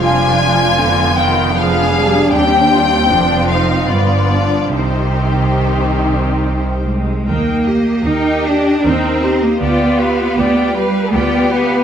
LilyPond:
<<
  \new Staff \with { instrumentName = "Violin section" } { \time 3/4 \key c \minor \tempo 4 = 77 aes''4. g''8 f''4 | g''4. f''8 d''4 | c''2~ c''8 r8 | g''8 ees''8 g''8 ees''8 g''8 ees''8 |
g''8 f''8 g''8 f''8 g''8 f''8 | }
  \new Staff \with { instrumentName = "Viola section" } { \time 3/4 \key c \minor << { d'4 b2 | c'4 d'8 ees'8 b4 | c'2~ c'8. r16 | bes'8 g'8 bes'8 g'8 bes'8 g'8 |
d''8 b'8 d''8 b'8 d''8 b'8 | } \\ { f8 f8 d8 ees8 f8 g8 | g4 f4 f4 | ees2~ ees8. r16 | ees'8 g'8 ees'8 g'8 ees'8 g'8 |
f'8 g'8 f'8 g'8 f'8 g'8 | } >> }
  \new Staff \with { instrumentName = "Violin section" } { \time 3/4 \key c \minor << { f'2 aes'4 | g'8 f'8 f'2 | g'2~ g'8. r16 | r4 g'4 ees'4 |
f'4 g'8 b'8 g'4 | } \\ { f'2 d'4~ | d'4 c'4 b8 d'8 | ees'2~ ees'8. r16 | r2. |
r2. | } >> }
  \new Staff \with { instrumentName = "Cello section" } { \time 3/4 \key c \minor f,2. | ees,4 f,4 g,4 | c2~ c8 aes8 | bes4 ees'8 d'8 c'8. bes16 |
b4. g8 b8 b8 | }
  \new Staff \with { instrumentName = "Double bass section" } { \clef bass \time 3/4 \key c \minor f,,2. | ees,4 f,,4 g,,4 | c,2~ c,8. r16 | ees,4 ees,4 ees,4 |
d,4 d,4 d,4 | }
>>